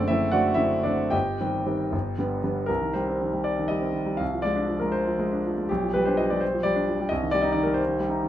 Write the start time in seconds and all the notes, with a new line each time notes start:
Already playing: F#1 D3 A3 C4 D4 A4 D5
0.08 D3 A3 C4 E4 E5
0.32 D3 A3 C4 F#4 D5 F#5
0.54 D3 A3 C4 E4 E5
0.83 D3 A3 C4 D4 D5
1.10 G1 G4 D#5 G5
1.41 D#3 G3 C4
1.66 D#3 G3 C4
1.92 G1
2.18 D3 G3 B3
2.43 D3 G3 B3
2.66 C2 A#4
2.81 D#3
2.94 G3 C5
3.08 C4
3.21 D#3
3.33 G3
3.44 D5
3.59 D#3
3.68 G3 D#5
3.81 C4
3.93 D#3
4.06 G3
4.17 C2 F5
4.34 F3
4.42 G#3 D5
4.56 D4
4.68 F3
4.80 G#3 A#4
4.92 C5
5.07 F3
5.19 G#3
5.32 D4
5.47 F3
5.58 G#3
5.69 B1 G4
5.83 F3
5.94 G3 B4
6.05 D4 C5
6.17 F3 D#5
6.30 G3 D5
6.41 C5
6.54 F3
6.63 G3 D5
6.76 D4
6.89 F3
7.00 G3
7.09 C2 D#5
7.23 D#3
7.31 G3 D5
7.42 D#4 D#5
7.52 D#3 D5
7.63 G3 A#4
7.74 C5
7.88 D#3
8.00 G3
8.09 D#4
8.23 D#3